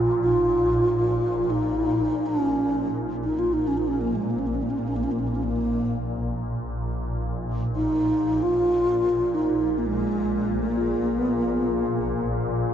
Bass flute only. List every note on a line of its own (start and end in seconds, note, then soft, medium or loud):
0.00 0.22 F4 medium
0.23 1.52 F4 medium
1.50 2.28 D#4 medium
2.26 2.98 C#4 medium
3.24 3.40 D#4 medium
3.39 3.55 F4 medium
3.53 3.69 D#4 medium
3.67 3.79 C#4 medium
3.77 3.89 D#4 medium
3.88 4.02 C#4 medium
4.01 4.12 A#3 medium
4.12 4.32 G#3 medium
4.12 4.17 A#3 soft
4.30 4.40 A#3 soft
4.39 4.49 C#4 soft
4.47 4.56 A#3 soft
4.55 4.64 C#4 soft
4.63 4.72 A#3 soft
4.70 4.80 C#4 soft
4.78 4.89 A#3 soft
4.88 4.98 C#4 medium
4.96 5.05 A#3 soft
5.04 5.13 C#4 soft
5.12 5.21 A#3 soft
5.20 5.29 C#4 soft
5.28 5.37 A#3 soft
5.35 5.45 C#4 soft
5.43 5.96 A#3 medium
7.76 8.44 D#4 medium
8.43 9.36 F4 medium
9.35 9.80 D#4 medium
9.78 9.88 A#3 soft
9.86 10.60 G#3 medium
10.60 11.19 A#3 medium
11.19 11.35 B3 medium
11.35 11.52 A#3 medium
11.52 11.68 B3 medium
11.68 12.27 A#3 medium